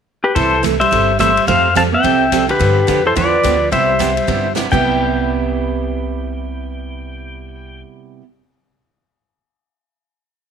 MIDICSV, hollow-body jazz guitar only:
0, 0, Header, 1, 2, 480
1, 0, Start_track
1, 0, Key_signature, 0, "major"
1, 0, Tempo, 279070
1, 604, Time_signature, 4, 2, 24, 8
1, 18069, End_track
2, 0, Start_track
2, 0, Title_t, "Hollow-body jazz guitar"
2, 0, Program_c, 0, 26
2, 618, Note_on_c, 0, 52, 79
2, 1093, Note_off_c, 0, 52, 0
2, 1389, Note_on_c, 0, 55, 79
2, 2010, Note_off_c, 0, 55, 0
2, 2065, Note_on_c, 0, 55, 73
2, 2508, Note_off_c, 0, 55, 0
2, 2556, Note_on_c, 0, 57, 89
2, 2995, Note_off_c, 0, 57, 0
2, 3027, Note_on_c, 0, 60, 87
2, 3113, Note_off_c, 0, 60, 0
2, 3306, Note_on_c, 0, 60, 86
2, 4206, Note_off_c, 0, 60, 0
2, 4272, Note_on_c, 0, 50, 82
2, 5170, Note_off_c, 0, 50, 0
2, 5254, Note_on_c, 0, 52, 68
2, 5424, Note_off_c, 0, 52, 0
2, 5439, Note_on_c, 0, 53, 84
2, 6329, Note_off_c, 0, 53, 0
2, 6393, Note_on_c, 0, 55, 75
2, 7763, Note_off_c, 0, 55, 0
2, 8123, Note_on_c, 0, 59, 72
2, 13433, Note_off_c, 0, 59, 0
2, 18069, End_track
0, 0, End_of_file